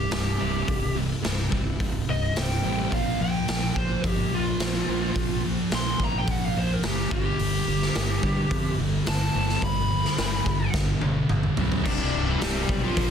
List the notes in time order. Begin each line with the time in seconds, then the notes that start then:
Already playing: C2 G2 C3 G3 E4 G4
0.11 C1 C2 G2 G3, snare, open hi-hat
0.40 C1 C2 G2 C3 E4
0.68 C1 C2 G2, kick, open hi-hat
0.96 C2 G2 C3
1.23 C1 C2 G2 G3, snare, open hi-hat
1.50 C1 C2 G2 E4, kick
1.80 C1 C2 G2 C3, kick, open hi-hat
2.08 C1 C2 G2 D#5
2.36 C1 C2 G2 G3 G5, snare, open hi-hat
2.64 A1 C2 G2 C3 E4
2.92 A#1 A#2 F3 A#3 F5, kick, open hi-hat
3.20 A#1 A#2 F3 G5
3.48 A#1 A#2 F3, snare, open hi-hat
3.76 A#1 A#2 F3 C5, kick
4.04 G1 A#2 F3 G4, kick, open hi-hat
4.32 A#1 A#2 F3 F4
4.60 A#1 A#2 F3, snare, open hi-hat
4.88 A#1 A#2 F3 A#3
5.15 A#1 A#2 F3, kick, open hi-hat
5.45 A#2 F3
5.71 A#1 A#2 F3 C6, snare, open hi-hat
6.00 A#1 A#2 F3, kick
6.05 A#5
6.18 G5
6.27 A#1 A#2 F3 F#5, kick, open hi-hat
6.45 F5
6.55 A#1 A#2 F3 C5
6.73 A#4
6.83 F#1 A#2 F3, snare, open hi-hat
6.87 G4
7.11 G1 G2 D3 G3 G4, kick
7.39 G1 G2 D3, open hi-hat
7.68 G1 G2 D3
7.82 snare
7.95 G1 G2 D3, snare, open hi-hat
8.23 G2 D3, kick
8.50 F2 G2 D3, kick, open hi-hat
8.79 G1 G2 D3
9.06 G1 G2 D3 A5, snare, open hi-hat
9.35 G1 G2 D3 G3
9.49 snare
9.62 G1 G2 D3 B5, kick, open hi-hat
9.90 G2 D3
10.05 snare
10.18 G1 G2 D3, snare, open hi-hat
10.46 G1 G2 D3, kick
10.74 G1 G2 D3, kick, snare
11.01 G1 G2 D3, high tom
11.29 G1 G2 D3, mid tom
11.43 mid tom
11.57 B1 G2 D3 G3, floor tom
11.72 floor tom
11.85 C1 C2 G2 C3 G3 D4 E4 D5, kick, crash
12.14 C1
12.27 E3 E4
12.40 C1 C2 G2 C3 G3 E4 G4, snare, open hi-hat
12.55 C3 G3 E4
12.69 B1, muted distorted electric guitar stroke, kick
12.84 C3 F3 G3 E4 F4
12.97 A#1 A#2 F3 A#3 D4 F4 A#4, kick, open hi-hat